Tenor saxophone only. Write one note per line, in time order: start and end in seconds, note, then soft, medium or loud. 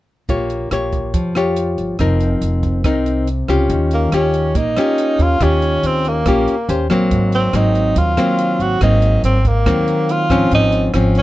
3.94 4.12 A#3 medium
4.15 4.59 C#4 medium
4.57 5.23 D#4 medium
5.22 5.45 F4 medium
5.43 5.88 C#4 medium
5.86 6.10 C4 medium
6.08 6.91 A#3 medium
7.35 7.58 C4 medium
7.56 8.00 D#4 medium
7.98 8.63 F4 medium
8.62 8.82 F#4 medium
8.83 9.22 D#4 medium
9.25 9.48 C4 medium
9.47 10.13 A#3 medium
10.11 10.53 F4 medium
10.54 10.93 D#4 medium
11.18 11.22 C#4 medium